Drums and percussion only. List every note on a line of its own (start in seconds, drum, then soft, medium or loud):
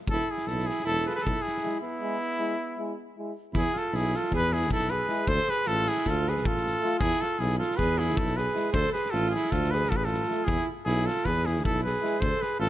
0.07 kick loud
0.38 snare soft
0.47 snare soft
0.59 snare soft
0.69 snare soft
0.80 snare soft
0.90 snare soft
0.98 snare soft
1.09 snare soft
1.18 snare soft
1.27 kick medium
1.48 snare soft
1.57 snare soft
1.66 snare soft
3.55 kick medium
3.76 snare soft
3.95 snare soft
4.14 snare soft
4.24 snare soft
4.31 kick medium
4.31 snare soft
4.52 snare soft
4.61 snare soft
4.71 kick medium
4.79 snare soft
4.88 snare soft
5.09 snare soft
5.27 kick medium
5.48 snare soft
5.67 snare soft
5.86 snare soft
5.97 snare soft
6.06 kick medium
6.06 snare soft
6.28 snare soft
6.37 snare soft
6.45 kick medium
6.57 snare soft
6.66 snare soft
6.84 snare soft
7.01 kick loud
7.23 snare soft
7.40 snare soft
7.62 snare soft
7.71 snare soft
7.79 kick medium
7.79 snare soft
7.99 snare soft
8.09 snare soft
8.17 kick loud
8.27 snare soft
8.38 snare soft
8.56 snare soft
8.74 kick loud
8.85 snare soft
8.95 snare soft
9.06 snare soft
9.15 snare soft
9.26 snare soft
9.36 snare soft
9.45 snare soft
9.52 kick medium
9.52 snare soft
9.64 snare soft
9.74 snare soft
9.85 snare soft
9.92 kick medium
10.04 snare soft
10.14 snare soft
10.23 snare soft
10.31 snare soft
10.48 kick loud
10.88 snare soft
11.08 snare soft
11.16 snare soft
11.25 kick medium
11.25 snare soft
11.47 snare soft
11.56 snare soft
11.65 kick loud
11.75 snare soft
11.86 snare soft
12.05 snare soft
12.22 kick loud
12.43 snare soft
12.62 snare soft